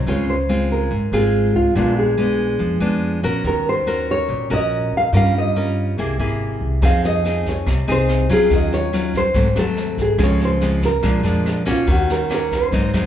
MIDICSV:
0, 0, Header, 1, 5, 480
1, 0, Start_track
1, 0, Key_signature, -5, "major"
1, 0, Tempo, 421348
1, 84, Time_signature, 4, 2, 24, 8
1, 14879, End_track
2, 0, Start_track
2, 0, Title_t, "Nylon-string guitar"
2, 0, Program_c, 0, 24
2, 103, Note_on_c, 0, 73, 90
2, 333, Note_off_c, 0, 73, 0
2, 338, Note_on_c, 0, 72, 71
2, 815, Note_off_c, 0, 72, 0
2, 819, Note_on_c, 0, 70, 70
2, 1258, Note_off_c, 0, 70, 0
2, 1295, Note_on_c, 0, 68, 82
2, 1736, Note_off_c, 0, 68, 0
2, 1774, Note_on_c, 0, 65, 72
2, 2016, Note_off_c, 0, 65, 0
2, 2027, Note_on_c, 0, 65, 75
2, 2258, Note_off_c, 0, 65, 0
2, 2262, Note_on_c, 0, 68, 70
2, 3646, Note_off_c, 0, 68, 0
2, 3955, Note_on_c, 0, 70, 88
2, 4163, Note_off_c, 0, 70, 0
2, 4204, Note_on_c, 0, 72, 87
2, 4677, Note_off_c, 0, 72, 0
2, 4683, Note_on_c, 0, 73, 85
2, 5156, Note_off_c, 0, 73, 0
2, 5165, Note_on_c, 0, 75, 88
2, 5637, Note_off_c, 0, 75, 0
2, 5663, Note_on_c, 0, 77, 90
2, 5720, Note_off_c, 0, 77, 0
2, 5885, Note_on_c, 0, 77, 99
2, 6110, Note_off_c, 0, 77, 0
2, 6132, Note_on_c, 0, 75, 75
2, 7502, Note_off_c, 0, 75, 0
2, 7806, Note_on_c, 0, 77, 86
2, 8031, Note_off_c, 0, 77, 0
2, 8036, Note_on_c, 0, 75, 87
2, 8513, Note_off_c, 0, 75, 0
2, 8532, Note_on_c, 0, 73, 77
2, 8956, Note_off_c, 0, 73, 0
2, 9018, Note_on_c, 0, 72, 79
2, 9485, Note_off_c, 0, 72, 0
2, 9488, Note_on_c, 0, 68, 82
2, 9713, Note_off_c, 0, 68, 0
2, 9722, Note_on_c, 0, 75, 89
2, 9950, Note_off_c, 0, 75, 0
2, 9954, Note_on_c, 0, 73, 81
2, 10434, Note_off_c, 0, 73, 0
2, 10450, Note_on_c, 0, 72, 87
2, 10921, Note_off_c, 0, 72, 0
2, 10924, Note_on_c, 0, 69, 85
2, 11399, Note_off_c, 0, 69, 0
2, 11409, Note_on_c, 0, 68, 78
2, 11634, Note_off_c, 0, 68, 0
2, 11660, Note_on_c, 0, 73, 81
2, 11879, Note_off_c, 0, 73, 0
2, 11903, Note_on_c, 0, 72, 79
2, 12360, Note_off_c, 0, 72, 0
2, 12365, Note_on_c, 0, 70, 83
2, 13335, Note_off_c, 0, 70, 0
2, 13342, Note_on_c, 0, 65, 71
2, 13561, Note_off_c, 0, 65, 0
2, 13577, Note_on_c, 0, 66, 73
2, 13799, Note_off_c, 0, 66, 0
2, 13802, Note_on_c, 0, 70, 70
2, 14032, Note_off_c, 0, 70, 0
2, 14063, Note_on_c, 0, 70, 72
2, 14282, Note_off_c, 0, 70, 0
2, 14299, Note_on_c, 0, 72, 71
2, 14879, Note_off_c, 0, 72, 0
2, 14879, End_track
3, 0, Start_track
3, 0, Title_t, "Nylon-string guitar"
3, 0, Program_c, 1, 24
3, 81, Note_on_c, 1, 49, 58
3, 88, Note_on_c, 1, 56, 51
3, 88, Note_on_c, 1, 60, 54
3, 93, Note_on_c, 1, 65, 63
3, 393, Note_off_c, 1, 56, 0
3, 395, Note_off_c, 1, 60, 0
3, 397, Note_off_c, 1, 65, 0
3, 559, Note_on_c, 1, 56, 48
3, 565, Note_on_c, 1, 60, 48
3, 565, Note_on_c, 1, 65, 48
3, 1019, Note_off_c, 1, 49, 0
3, 1034, Note_on_c, 1, 44, 51
3, 1039, Note_off_c, 1, 56, 0
3, 1041, Note_off_c, 1, 60, 0
3, 1042, Note_off_c, 1, 65, 0
3, 1285, Note_on_c, 1, 56, 55
3, 1287, Note_on_c, 1, 60, 64
3, 1293, Note_on_c, 1, 65, 61
3, 1966, Note_off_c, 1, 56, 0
3, 1966, Note_off_c, 1, 60, 0
3, 1970, Note_off_c, 1, 65, 0
3, 1974, Note_off_c, 1, 44, 0
3, 1999, Note_on_c, 1, 46, 55
3, 2003, Note_on_c, 1, 56, 63
3, 2005, Note_on_c, 1, 59, 53
3, 2012, Note_on_c, 1, 62, 53
3, 2444, Note_off_c, 1, 56, 0
3, 2446, Note_off_c, 1, 59, 0
3, 2448, Note_off_c, 1, 62, 0
3, 2477, Note_on_c, 1, 56, 54
3, 2485, Note_on_c, 1, 59, 51
3, 2491, Note_on_c, 1, 62, 53
3, 2937, Note_off_c, 1, 46, 0
3, 2952, Note_on_c, 1, 53, 52
3, 3162, Note_off_c, 1, 56, 0
3, 3166, Note_off_c, 1, 59, 0
3, 3167, Note_off_c, 1, 62, 0
3, 3193, Note_on_c, 1, 56, 54
3, 3201, Note_on_c, 1, 59, 50
3, 3208, Note_on_c, 1, 62, 66
3, 3640, Note_off_c, 1, 56, 0
3, 3644, Note_off_c, 1, 59, 0
3, 3645, Note_off_c, 1, 62, 0
3, 3684, Note_on_c, 1, 61, 54
3, 3688, Note_on_c, 1, 66, 62
3, 3694, Note_on_c, 1, 70, 72
3, 3893, Note_off_c, 1, 53, 0
3, 3926, Note_on_c, 1, 51, 53
3, 4365, Note_off_c, 1, 61, 0
3, 4367, Note_off_c, 1, 66, 0
3, 4368, Note_off_c, 1, 70, 0
3, 4406, Note_on_c, 1, 61, 56
3, 4410, Note_on_c, 1, 66, 45
3, 4416, Note_on_c, 1, 70, 58
3, 4860, Note_off_c, 1, 51, 0
3, 4882, Note_on_c, 1, 46, 48
3, 5085, Note_off_c, 1, 61, 0
3, 5088, Note_off_c, 1, 66, 0
3, 5091, Note_off_c, 1, 70, 0
3, 5127, Note_on_c, 1, 61, 62
3, 5136, Note_on_c, 1, 66, 64
3, 5137, Note_on_c, 1, 70, 71
3, 5807, Note_off_c, 1, 61, 0
3, 5809, Note_off_c, 1, 66, 0
3, 5811, Note_off_c, 1, 70, 0
3, 5818, Note_off_c, 1, 46, 0
3, 5848, Note_on_c, 1, 55, 56
3, 5849, Note_on_c, 1, 61, 59
3, 5852, Note_on_c, 1, 65, 51
3, 5858, Note_on_c, 1, 70, 59
3, 6287, Note_off_c, 1, 61, 0
3, 6287, Note_off_c, 1, 65, 0
3, 6292, Note_off_c, 1, 70, 0
3, 6335, Note_on_c, 1, 61, 47
3, 6341, Note_on_c, 1, 65, 52
3, 6345, Note_on_c, 1, 70, 55
3, 6781, Note_off_c, 1, 55, 0
3, 6789, Note_off_c, 1, 61, 0
3, 6792, Note_off_c, 1, 65, 0
3, 6795, Note_off_c, 1, 70, 0
3, 6814, Note_on_c, 1, 48, 53
3, 6818, Note_on_c, 1, 58, 49
3, 6823, Note_on_c, 1, 64, 49
3, 6828, Note_on_c, 1, 68, 55
3, 7011, Note_off_c, 1, 58, 0
3, 7011, Note_off_c, 1, 64, 0
3, 7017, Note_off_c, 1, 68, 0
3, 7055, Note_on_c, 1, 58, 54
3, 7064, Note_on_c, 1, 64, 55
3, 7069, Note_on_c, 1, 68, 56
3, 7731, Note_off_c, 1, 58, 0
3, 7733, Note_off_c, 1, 64, 0
3, 7737, Note_off_c, 1, 68, 0
3, 7745, Note_off_c, 1, 48, 0
3, 7771, Note_on_c, 1, 53, 60
3, 7773, Note_on_c, 1, 60, 59
3, 7777, Note_on_c, 1, 63, 57
3, 7779, Note_on_c, 1, 68, 59
3, 8209, Note_off_c, 1, 60, 0
3, 8211, Note_off_c, 1, 63, 0
3, 8212, Note_off_c, 1, 68, 0
3, 8258, Note_on_c, 1, 60, 47
3, 8263, Note_on_c, 1, 63, 46
3, 8267, Note_on_c, 1, 68, 51
3, 8703, Note_off_c, 1, 53, 0
3, 8728, Note_off_c, 1, 60, 0
3, 8729, Note_off_c, 1, 63, 0
3, 8732, Note_off_c, 1, 68, 0
3, 8742, Note_on_c, 1, 48, 56
3, 8973, Note_on_c, 1, 60, 57
3, 8977, Note_on_c, 1, 63, 65
3, 8983, Note_on_c, 1, 68, 58
3, 9410, Note_off_c, 1, 60, 0
3, 9413, Note_off_c, 1, 63, 0
3, 9414, Note_off_c, 1, 68, 0
3, 9450, Note_on_c, 1, 54, 65
3, 9455, Note_on_c, 1, 61, 62
3, 9463, Note_on_c, 1, 65, 66
3, 9669, Note_off_c, 1, 48, 0
3, 9697, Note_on_c, 1, 51, 56
3, 10129, Note_off_c, 1, 54, 0
3, 10131, Note_off_c, 1, 61, 0
3, 10133, Note_off_c, 1, 65, 0
3, 10175, Note_on_c, 1, 54, 49
3, 10179, Note_on_c, 1, 61, 44
3, 10183, Note_on_c, 1, 65, 53
3, 10492, Note_off_c, 1, 54, 0
3, 10494, Note_off_c, 1, 61, 0
3, 10497, Note_off_c, 1, 65, 0
3, 10627, Note_off_c, 1, 51, 0
3, 10647, Note_on_c, 1, 44, 51
3, 10648, Note_on_c, 1, 54, 54
3, 10653, Note_on_c, 1, 57, 55
3, 10660, Note_on_c, 1, 60, 57
3, 10787, Note_off_c, 1, 54, 0
3, 10791, Note_off_c, 1, 57, 0
3, 10793, Note_off_c, 1, 60, 0
3, 10892, Note_on_c, 1, 54, 59
3, 10897, Note_on_c, 1, 57, 61
3, 10903, Note_on_c, 1, 60, 68
3, 11572, Note_off_c, 1, 54, 0
3, 11572, Note_off_c, 1, 57, 0
3, 11576, Note_off_c, 1, 60, 0
3, 11583, Note_off_c, 1, 44, 0
3, 11603, Note_on_c, 1, 49, 62
3, 11604, Note_on_c, 1, 53, 56
3, 11612, Note_on_c, 1, 56, 62
3, 11615, Note_on_c, 1, 60, 64
3, 12047, Note_off_c, 1, 53, 0
3, 12048, Note_off_c, 1, 56, 0
3, 12052, Note_off_c, 1, 60, 0
3, 12090, Note_on_c, 1, 53, 53
3, 12098, Note_on_c, 1, 56, 50
3, 12098, Note_on_c, 1, 60, 54
3, 12411, Note_off_c, 1, 53, 0
3, 12413, Note_off_c, 1, 56, 0
3, 12415, Note_off_c, 1, 60, 0
3, 12542, Note_off_c, 1, 49, 0
3, 12561, Note_on_c, 1, 46, 57
3, 12564, Note_on_c, 1, 53, 60
3, 12568, Note_on_c, 1, 56, 54
3, 12573, Note_on_c, 1, 62, 56
3, 12766, Note_off_c, 1, 53, 0
3, 12769, Note_off_c, 1, 56, 0
3, 12772, Note_off_c, 1, 62, 0
3, 12798, Note_on_c, 1, 53, 56
3, 12803, Note_on_c, 1, 56, 55
3, 12808, Note_on_c, 1, 62, 63
3, 13245, Note_off_c, 1, 53, 0
3, 13247, Note_off_c, 1, 56, 0
3, 13249, Note_off_c, 1, 62, 0
3, 13277, Note_on_c, 1, 58, 61
3, 13284, Note_on_c, 1, 61, 64
3, 13290, Note_on_c, 1, 66, 65
3, 13501, Note_off_c, 1, 46, 0
3, 13523, Note_on_c, 1, 51, 61
3, 13965, Note_off_c, 1, 58, 0
3, 13968, Note_off_c, 1, 61, 0
3, 13971, Note_off_c, 1, 66, 0
3, 14007, Note_on_c, 1, 58, 52
3, 14016, Note_on_c, 1, 61, 49
3, 14022, Note_on_c, 1, 66, 52
3, 14462, Note_off_c, 1, 51, 0
3, 14469, Note_off_c, 1, 58, 0
3, 14474, Note_off_c, 1, 61, 0
3, 14475, Note_off_c, 1, 66, 0
3, 14494, Note_on_c, 1, 44, 49
3, 14501, Note_on_c, 1, 54, 53
3, 14501, Note_on_c, 1, 60, 59
3, 14508, Note_on_c, 1, 63, 58
3, 14696, Note_off_c, 1, 54, 0
3, 14697, Note_off_c, 1, 60, 0
3, 14700, Note_off_c, 1, 63, 0
3, 14733, Note_on_c, 1, 54, 52
3, 14737, Note_on_c, 1, 60, 56
3, 14743, Note_on_c, 1, 63, 57
3, 14879, Note_off_c, 1, 44, 0
3, 14879, Note_off_c, 1, 54, 0
3, 14879, Note_off_c, 1, 60, 0
3, 14879, Note_off_c, 1, 63, 0
3, 14879, End_track
4, 0, Start_track
4, 0, Title_t, "Upright bass"
4, 0, Program_c, 2, 32
4, 75, Note_on_c, 2, 37, 95
4, 993, Note_off_c, 2, 37, 0
4, 1034, Note_on_c, 2, 32, 72
4, 1262, Note_off_c, 2, 32, 0
4, 1272, Note_on_c, 2, 32, 85
4, 1723, Note_off_c, 2, 32, 0
4, 1758, Note_on_c, 2, 37, 69
4, 1984, Note_off_c, 2, 37, 0
4, 1997, Note_on_c, 2, 34, 100
4, 2914, Note_off_c, 2, 34, 0
4, 2960, Note_on_c, 2, 41, 84
4, 3184, Note_off_c, 2, 41, 0
4, 3195, Note_on_c, 2, 41, 73
4, 3645, Note_off_c, 2, 41, 0
4, 3680, Note_on_c, 2, 34, 81
4, 3904, Note_off_c, 2, 34, 0
4, 3914, Note_on_c, 2, 39, 91
4, 4832, Note_off_c, 2, 39, 0
4, 4885, Note_on_c, 2, 34, 76
4, 5107, Note_off_c, 2, 34, 0
4, 5129, Note_on_c, 2, 34, 84
4, 5572, Note_off_c, 2, 34, 0
4, 5604, Note_on_c, 2, 41, 72
4, 5826, Note_off_c, 2, 41, 0
4, 5839, Note_on_c, 2, 43, 106
4, 6755, Note_off_c, 2, 43, 0
4, 6804, Note_on_c, 2, 36, 76
4, 7026, Note_off_c, 2, 36, 0
4, 7050, Note_on_c, 2, 32, 74
4, 7493, Note_off_c, 2, 32, 0
4, 7530, Note_on_c, 2, 36, 74
4, 7750, Note_off_c, 2, 36, 0
4, 7772, Note_on_c, 2, 41, 106
4, 8682, Note_off_c, 2, 41, 0
4, 8731, Note_on_c, 2, 36, 73
4, 8951, Note_off_c, 2, 36, 0
4, 8973, Note_on_c, 2, 36, 85
4, 9415, Note_off_c, 2, 36, 0
4, 9452, Note_on_c, 2, 41, 73
4, 9671, Note_off_c, 2, 41, 0
4, 9688, Note_on_c, 2, 39, 94
4, 10602, Note_off_c, 2, 39, 0
4, 10646, Note_on_c, 2, 32, 84
4, 10869, Note_off_c, 2, 32, 0
4, 10890, Note_on_c, 2, 39, 76
4, 11334, Note_off_c, 2, 39, 0
4, 11365, Note_on_c, 2, 32, 76
4, 11589, Note_off_c, 2, 32, 0
4, 11603, Note_on_c, 2, 37, 103
4, 12520, Note_off_c, 2, 37, 0
4, 12561, Note_on_c, 2, 34, 81
4, 12787, Note_off_c, 2, 34, 0
4, 12801, Note_on_c, 2, 41, 82
4, 13251, Note_off_c, 2, 41, 0
4, 13286, Note_on_c, 2, 34, 71
4, 13510, Note_off_c, 2, 34, 0
4, 13528, Note_on_c, 2, 39, 107
4, 14443, Note_off_c, 2, 39, 0
4, 14488, Note_on_c, 2, 32, 82
4, 14712, Note_off_c, 2, 32, 0
4, 14731, Note_on_c, 2, 39, 76
4, 14879, Note_off_c, 2, 39, 0
4, 14879, End_track
5, 0, Start_track
5, 0, Title_t, "Drums"
5, 7769, Note_on_c, 9, 36, 60
5, 7774, Note_on_c, 9, 37, 56
5, 7774, Note_on_c, 9, 38, 23
5, 7883, Note_off_c, 9, 36, 0
5, 7888, Note_off_c, 9, 37, 0
5, 7888, Note_off_c, 9, 38, 0
5, 8016, Note_on_c, 9, 38, 20
5, 8130, Note_off_c, 9, 38, 0
5, 8256, Note_on_c, 9, 38, 20
5, 8370, Note_off_c, 9, 38, 0
5, 8490, Note_on_c, 9, 36, 22
5, 8495, Note_on_c, 9, 38, 22
5, 8604, Note_off_c, 9, 36, 0
5, 8609, Note_off_c, 9, 38, 0
5, 8731, Note_on_c, 9, 36, 56
5, 8732, Note_on_c, 9, 37, 62
5, 8732, Note_on_c, 9, 38, 25
5, 8845, Note_off_c, 9, 36, 0
5, 8846, Note_off_c, 9, 37, 0
5, 8846, Note_off_c, 9, 38, 0
5, 8975, Note_on_c, 9, 38, 22
5, 9089, Note_off_c, 9, 38, 0
5, 9211, Note_on_c, 9, 37, 55
5, 9211, Note_on_c, 9, 38, 20
5, 9325, Note_off_c, 9, 37, 0
5, 9325, Note_off_c, 9, 38, 0
5, 9450, Note_on_c, 9, 36, 24
5, 9455, Note_on_c, 9, 38, 20
5, 9563, Note_off_c, 9, 36, 0
5, 9569, Note_off_c, 9, 38, 0
5, 9687, Note_on_c, 9, 38, 25
5, 9689, Note_on_c, 9, 36, 59
5, 9801, Note_off_c, 9, 38, 0
5, 9802, Note_off_c, 9, 36, 0
5, 9931, Note_on_c, 9, 38, 22
5, 10044, Note_off_c, 9, 38, 0
5, 10172, Note_on_c, 9, 37, 54
5, 10172, Note_on_c, 9, 38, 24
5, 10286, Note_off_c, 9, 37, 0
5, 10286, Note_off_c, 9, 38, 0
5, 10407, Note_on_c, 9, 36, 21
5, 10411, Note_on_c, 9, 38, 20
5, 10521, Note_off_c, 9, 36, 0
5, 10525, Note_off_c, 9, 38, 0
5, 10640, Note_on_c, 9, 38, 22
5, 10645, Note_on_c, 9, 36, 59
5, 10754, Note_off_c, 9, 38, 0
5, 10759, Note_off_c, 9, 36, 0
5, 10886, Note_on_c, 9, 37, 55
5, 10886, Note_on_c, 9, 38, 22
5, 11000, Note_off_c, 9, 37, 0
5, 11000, Note_off_c, 9, 38, 0
5, 11123, Note_on_c, 9, 38, 21
5, 11237, Note_off_c, 9, 38, 0
5, 11365, Note_on_c, 9, 36, 22
5, 11366, Note_on_c, 9, 38, 22
5, 11479, Note_off_c, 9, 36, 0
5, 11480, Note_off_c, 9, 38, 0
5, 11601, Note_on_c, 9, 37, 60
5, 11601, Note_on_c, 9, 38, 24
5, 11605, Note_on_c, 9, 36, 59
5, 11715, Note_off_c, 9, 37, 0
5, 11715, Note_off_c, 9, 38, 0
5, 11719, Note_off_c, 9, 36, 0
5, 11845, Note_on_c, 9, 38, 20
5, 11959, Note_off_c, 9, 38, 0
5, 12082, Note_on_c, 9, 38, 23
5, 12196, Note_off_c, 9, 38, 0
5, 12323, Note_on_c, 9, 36, 21
5, 12327, Note_on_c, 9, 38, 23
5, 12437, Note_off_c, 9, 36, 0
5, 12441, Note_off_c, 9, 38, 0
5, 12563, Note_on_c, 9, 37, 59
5, 12563, Note_on_c, 9, 38, 23
5, 12565, Note_on_c, 9, 36, 56
5, 12677, Note_off_c, 9, 37, 0
5, 12677, Note_off_c, 9, 38, 0
5, 12679, Note_off_c, 9, 36, 0
5, 12808, Note_on_c, 9, 38, 23
5, 12922, Note_off_c, 9, 38, 0
5, 13049, Note_on_c, 9, 37, 54
5, 13049, Note_on_c, 9, 38, 23
5, 13163, Note_off_c, 9, 37, 0
5, 13163, Note_off_c, 9, 38, 0
5, 13289, Note_on_c, 9, 36, 22
5, 13294, Note_on_c, 9, 38, 23
5, 13402, Note_off_c, 9, 36, 0
5, 13408, Note_off_c, 9, 38, 0
5, 13529, Note_on_c, 9, 36, 56
5, 13535, Note_on_c, 9, 38, 25
5, 13643, Note_off_c, 9, 36, 0
5, 13649, Note_off_c, 9, 38, 0
5, 13777, Note_on_c, 9, 38, 21
5, 13891, Note_off_c, 9, 38, 0
5, 14014, Note_on_c, 9, 37, 56
5, 14014, Note_on_c, 9, 38, 22
5, 14128, Note_off_c, 9, 37, 0
5, 14128, Note_off_c, 9, 38, 0
5, 14251, Note_on_c, 9, 36, 23
5, 14256, Note_on_c, 9, 38, 22
5, 14365, Note_off_c, 9, 36, 0
5, 14370, Note_off_c, 9, 38, 0
5, 14491, Note_on_c, 9, 36, 52
5, 14492, Note_on_c, 9, 38, 23
5, 14605, Note_off_c, 9, 36, 0
5, 14605, Note_off_c, 9, 38, 0
5, 14739, Note_on_c, 9, 37, 60
5, 14739, Note_on_c, 9, 38, 21
5, 14853, Note_off_c, 9, 37, 0
5, 14853, Note_off_c, 9, 38, 0
5, 14879, End_track
0, 0, End_of_file